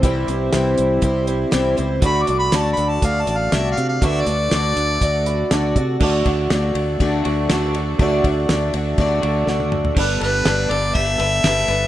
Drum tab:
CC |----------------|----------------|----------------|x---------------|
RD |----------------|----------------|----------------|--x-x-x-x-x-x-x-|
HH |x-x-x-x-x-x-x-x-|x-x-x-x-x-x-x-x-|x-x-x-x-x-x-x-x-|----------------|
SD |----o-------o---|----o-------o---|----o-------o---|----o-------o---|
T1 |----------------|----------------|----------------|----------------|
T2 |----------------|----------------|----------------|----------------|
FT |----------------|----------------|----------------|----------------|
BD |o-------o-------|o-------o-------|o-------o-----o-|o-o-----o-------|

CC |----------------|x---------------|
RD |x-x-x-x-x-x-----|--x-x-x-x-x-x-x-|
HH |----------------|----------------|
SD |----o-------o---|----o-------o---|
T1 |-------------o--|----------------|
T2 |--------------o-|----------------|
FT |---------------o|----------------|
BD |o-o-----o-------|o-------o-------|